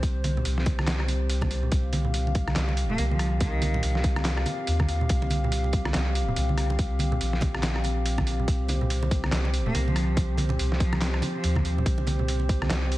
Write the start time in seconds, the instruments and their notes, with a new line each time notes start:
Already playing: sub bass C2, analog synth pad C4 G4 C5
0.03 kick, closed hi-hat
0.24 closed hi-hat, high conga
0.37 muted conga, low conga
0.45 sub bass C2, closed hi-hat
0.58 snare
0.66 kick, closed hi-hat, muted conga
0.79 cross-stick, high conga
0.87 snare, clap, closed hi-hat
1.00 cross-stick
1.08 closed hi-hat, muted conga
1.29 closed hi-hat
1.41 kick, cross-stick, muted conga, high conga
1.51 closed hi-hat
1.63 low conga
1.71 sub bass C2, analog synth pad F5, kick, closed hi-hat
1.93 closed hi-hat, muted conga, high conga
2.05 low conga
2.14 closed hi-hat
2.27 muted conga
2.35 kick, closed hi-hat
2.48 cross-stick, high conga
2.56 sub bass C2, snare, clap, closed hi-hat
2.69 muted conga
2.77 closed hi-hat
2.90 cello A#3, low conga
2.98 sub bass C2, closed hi-hat, muted conga
3.11 cello F3, high conga
3.19 cross-stick, closed hi-hat
3.40 cello D#3, kick, closed hi-hat, muted conga
3.62 closed hi-hat, high conga
3.74 muted conga, low conga
3.83 sub bass C2, closed hi-hat
3.95 snare
4.04 kick, closed hi-hat
4.16 cross-stick, muted conga, high conga
4.25 snare, clap, closed hi-hat
4.37 cross-stick
4.46 closed hi-hat, muted conga
4.67 sub bass D#2, closed hi-hat
4.79 kick, cross-stick, high conga
4.88 closed hi-hat, muted conga
5.01 low conga
5.09 sub bass C2, kick, closed hi-hat
5.22 muted conga
5.30 closed hi-hat, high conga
5.44 low conga
5.52 closed hi-hat
5.64 muted conga
5.73 kick, closed hi-hat
5.85 cross-stick, high conga
5.94 sub bass C2, snare, clap, closed hi-hat, muted conga
6.15 closed hi-hat
6.28 low conga
6.36 sub bass C2, closed hi-hat, muted conga
6.49 high conga
6.58 cross-stick, closed hi-hat
6.70 muted conga
6.79 kick, closed hi-hat
6.99 closed hi-hat, high conga
7.12 muted conga, low conga
7.21 sub bass A#1, closed hi-hat
7.33 snare
7.41 kick, closed hi-hat, muted conga
7.54 cross-stick, high conga
7.63 snare, clap, closed hi-hat
7.76 cross-stick
7.84 closed hi-hat, muted conga
8.06 closed hi-hat
8.18 kick, cross-stick, muted conga, high conga
8.27 closed hi-hat
8.40 low conga
8.48 sub bass C2, analog synth pad C5, kick, closed hi-hat
8.69 closed hi-hat, muted conga, high conga
8.81 low conga
8.90 closed hi-hat
9.03 muted conga
9.11 kick, closed hi-hat
9.24 cross-stick, high conga
9.32 sub bass C2, snare, clap, closed hi-hat
9.45 muted conga
9.54 closed hi-hat
9.66 cello A#3, low conga
9.75 sub bass C2, closed hi-hat, muted conga
9.87 cello F3, high conga
9.96 cross-stick, closed hi-hat
10.17 kick, closed hi-hat, muted conga
10.38 closed hi-hat, high conga
10.49 muted conga, low conga
10.59 sub bass C2, closed hi-hat
10.72 snare
10.80 cello F3, kick, closed hi-hat
10.93 cross-stick, muted conga, high conga
11.02 snare, clap, closed hi-hat
11.14 cross-stick
11.22 closed hi-hat, muted conga
11.35 cello F3
11.44 sub bass D#2, closed hi-hat
11.55 kick, cross-stick, high conga
11.65 closed hi-hat, muted conga
11.78 low conga
11.86 sub bass C2, kick, closed hi-hat
11.98 muted conga
12.07 closed hi-hat, high conga
12.19 low conga
12.28 closed hi-hat
12.40 muted conga
12.49 kick, closed hi-hat
12.62 cross-stick, high conga
12.70 sub bass C2, snare, clap, closed hi-hat, muted conga
12.92 closed hi-hat